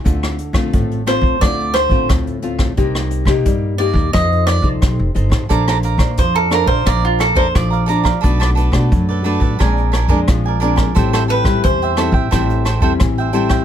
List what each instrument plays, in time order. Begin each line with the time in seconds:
0.04 upright bass D2, nylon-string guitar D3 A3 C4 F4, kick, closed hi-hat
0.23 cross-stick, closed hi-hat
0.38 closed hi-hat
0.53 upright bass D3, nylon-string guitar A3 C4 F4, kick, cross-stick, closed hi-hat
0.73 upright bass A1, nylon-string guitar A2, kick, closed hi-hat
0.91 closed hi-hat
1.06 nylon-string guitar A3 C4 F4, cavaquinho C5, cross-stick, closed hi-hat
1.21 upright bass D2, kick
1.41 upright bass D2, nylon-string guitar D3 A3 C4 F4, cavaquinho D5, kick, cross-stick, closed hi-hat
1.60 closed hi-hat
1.74 cavaquinho C5, cross-stick, closed hi-hat
1.89 upright bass A1, nylon-string guitar A3 C4 F4, kick, closed hi-hat
2.09 upright bass D2, nylon-string guitar A2, kick, cross-stick, closed hi-hat
2.27 closed hi-hat
2.42 nylon-string guitar A3 C4 F4, closed hi-hat
2.59 kick, cross-stick, closed hi-hat
2.77 upright bass C2, nylon-string guitar C3 A#3 D#4 G4, kick, closed hi-hat
2.95 cross-stick, closed hi-hat
3.11 closed hi-hat
3.25 upright bass C3, nylon-string guitar A#3 D#4 G4, kick, cross-stick, closed hi-hat
3.45 upright bass G2, nylon-string guitar G3, kick, closed hi-hat
3.78 nylon-string guitar A#3 D#4 G4, cavaquinho D5, closed hi-hat
3.93 upright bass D#2, kick
4.13 upright bass F2, nylon-string guitar F3 D#4 A4 C5, cavaquinho D#5, kick, cross-stick, closed hi-hat
4.32 closed hi-hat
4.47 cavaquinho D5, cross-stick, closed hi-hat
4.62 upright bass C2, nylon-string guitar D#4 A4 C5, kick, closed hi-hat
4.81 upright bass B1, nylon-string guitar C3, kick, cross-stick, closed hi-hat
4.99 upright bass F1
5.15 upright bass G1, nylon-string guitar D#4 A4 C5, closed hi-hat
5.30 upright bass A1, kick, cross-stick, closed hi-hat
5.49 upright bass A#1, nylon-string guitar A#3 D4 A4 C5, cavaquinho A4 D5 F5 A#5, kick, closed hi-hat
5.68 cavaquinho A4 D5 F5 A#5, cross-stick, closed hi-hat
5.83 cavaquinho D5 F5 A#5, closed hi-hat
5.98 upright bass A#2, nylon-string guitar D4 C5, kick, cross-stick, closed hi-hat
6.17 upright bass F2, nylon-string guitar F3, cavaquinho C5, kick, closed hi-hat
6.35 cavaquinho A4 D5 F5 A#5, closed hi-hat
6.50 nylon-string guitar D4 A4 C5, cavaquinho A4 A#4 D5 F5 A#5, cross-stick, closed hi-hat
6.66 upright bass A#1, cavaquinho C5 D5 F5 A#5, kick
6.86 upright bass A#1, nylon-string guitar A#3 D4 C5, cavaquinho D5 F5 A#5, kick, cross-stick, closed hi-hat
7.04 cavaquinho F4, closed hi-hat
7.19 cavaquinho A4 D5 F5 A#5, cross-stick, closed hi-hat
7.35 upright bass F2, nylon-string guitar D4 A4 C5, cavaquinho A4 C5 D5 F5 A#5, kick, closed hi-hat
7.55 upright bass A#1, nylon-string guitar F3, cavaquinho D5, kick, cross-stick, closed hi-hat
7.70 cavaquinho D5 F5 A#5, closed hi-hat
7.86 nylon-string guitar D4 A4 C5, cavaquinho A4 D5 F5 A#5, closed hi-hat
8.03 cavaquinho D5 F5 A#5, kick, cross-stick, closed hi-hat
8.21 upright bass B1, nylon-string guitar B2 A3 D4, cavaquinho D4 A4 B4 D5, kick, closed hi-hat
8.25 nylon-string guitar F#4
8.40 cavaquinho D4 A4 B4 D5, cross-stick, closed hi-hat
8.55 cavaquinho D4 A4 B4 D5, closed hi-hat
8.72 upright bass B2, nylon-string guitar A3 D4 F#4, kick, cross-stick, closed hi-hat
8.92 upright bass F#2, nylon-string guitar F#3, kick, closed hi-hat
9.09 cavaquinho A4 B4 D5
9.24 nylon-string guitar A3 D4 F#4, cavaquinho D4 A4 B4 D5, closed hi-hat
9.40 upright bass A1, cavaquinho A4 B4 D5, kick
9.59 upright bass A#1, nylon-string guitar A#2 G#3 C4 D4, cavaquinho D4 A#4 D5 G#5, kick, cross-stick, closed hi-hat
9.78 closed hi-hat
9.92 cavaquinho D4 A#4 D5 G#5, cross-stick, closed hi-hat
10.08 upright bass F2, nylon-string guitar G#3 C4 D4, cavaquinho D4 A#4 D5 G#5, kick, closed hi-hat
10.28 upright bass A#1, nylon-string guitar F3, kick, cross-stick, closed hi-hat
10.45 cavaquinho A#4 D5 G#5
10.60 nylon-string guitar G#3 C4 D4, cavaquinho D4 A#4 D5 G#5, closed hi-hat
10.76 cavaquinho A#4 D5 G#5, kick, cross-stick, closed hi-hat
10.95 upright bass A1, nylon-string guitar A2 G3 C4 E4, cavaquinho A4 C5 E5 G5, kick, closed hi-hat
11.13 cavaquinho A4 C5 E5 G5, cross-stick, closed hi-hat
11.28 cavaquinho A4 B4 E5 G5, closed hi-hat
11.44 upright bass A2, nylon-string guitar G3 C4 E4, kick, cross-stick, closed hi-hat
11.64 upright bass E2, nylon-string guitar E3, cavaquinho C5, kick, closed hi-hat
11.82 cavaquinho C5 E5 G5, closed hi-hat
11.97 nylon-string guitar G3 C4 E4, cavaquinho A4 C5 E5 G5, cross-stick, closed hi-hat
12.12 upright bass A1, cavaquinho C5 E5 G5, kick
12.31 upright bass A1, nylon-string guitar A2 G3 C4 E4, cavaquinho A4 C5 E5 G5, kick, cross-stick, closed hi-hat
12.50 closed hi-hat
12.65 cavaquinho A4 C5 E5 G5, cross-stick, closed hi-hat
12.80 upright bass E2, nylon-string guitar G3 C4 E4, cavaquinho A4 C5 E5 G5, kick, closed hi-hat
13.00 upright bass A1, nylon-string guitar E3, kick, cross-stick, closed hi-hat
13.17 cavaquinho C5 E5 G5, closed hi-hat
13.33 nylon-string guitar G3 C4 E4, cavaquinho A4 C5 E5 G5, closed hi-hat
13.49 cavaquinho C5 E5 G5, kick, cross-stick, closed hi-hat